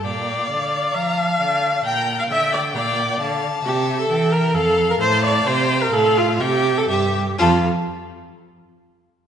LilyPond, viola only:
\new Staff \with { instrumentName = "Viola" } { \time 4/4 \key f \major \tempo 4 = 131 d''2 f''2 | g''8. f''16 e''8 d''8 d''4. r8 | g'8. a'8. bes'8 a'8. bes'16 c''8 d''8 | c''8. bes'16 a'8 f'8 g'8. a'16 g'4 |
f'8 r2. r8 | }